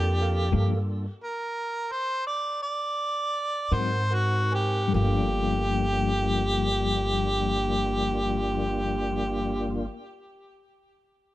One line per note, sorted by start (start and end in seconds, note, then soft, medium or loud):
0.00 0.50 F2 medium
0.00 0.50 A#3 medium
0.00 0.50 D4 medium
0.00 0.49 F4 medium
0.00 0.84 G4 medium
0.00 0.12 A4 medium
0.00 0.12 A#4 soft
0.00 0.13 G5 medium
0.00 0.49 A5 medium
0.21 0.45 A4 medium
0.21 0.45 A#4 soft
0.21 0.46 F5 medium
0.52 0.72 G2 medium
0.52 1.05 G2 medium
0.52 0.72 F3 medium
0.52 0.73 A#3 medium
0.52 1.06 A#3 medium
0.52 0.73 D4 medium
0.52 1.06 D4 medium
0.52 1.06 F4 medium
0.52 0.77 A4 medium
0.52 1.06 A4 medium
0.52 0.78 A#4 medium
0.52 0.78 F5 medium
1.24 1.93 A#4 medium
1.92 2.24 C5 medium
2.27 2.60 D5 medium
2.63 3.75 D5 medium
3.71 4.90 G#2 medium
3.71 3.96 G#2 soft
3.71 3.96 F#3 soft
3.71 3.96 C4 medium
3.71 4.93 C4 medium
3.71 3.95 D#4 medium
3.71 4.92 D#4 medium
3.71 4.01 A#4 soft
3.71 4.92 A#4 medium
3.71 4.01 C5 soft
3.71 4.15 C5 medium
3.71 4.01 F#5 medium
3.71 4.93 F#5 medium
4.10 4.52 F#4 medium
4.10 4.41 A#4 soft
4.10 4.41 C5 soft
4.10 4.42 F#5 soft
4.51 4.94 G4 medium
4.51 4.83 A#4 soft
4.51 4.83 C5 soft
4.51 4.83 G#5 soft
4.88 9.84 G2 medium
4.88 9.83 A4 soft
4.94 9.86 G1 medium
4.94 9.91 F3 medium
4.94 9.86 A#3 medium
4.94 9.87 D4 medium
4.94 9.86 F4 medium
4.94 9.86 G4 medium
4.94 9.85 A#4 soft
4.94 9.87 F5 medium
5.01 9.97 A#3 medium
5.08 10.03 D4 medium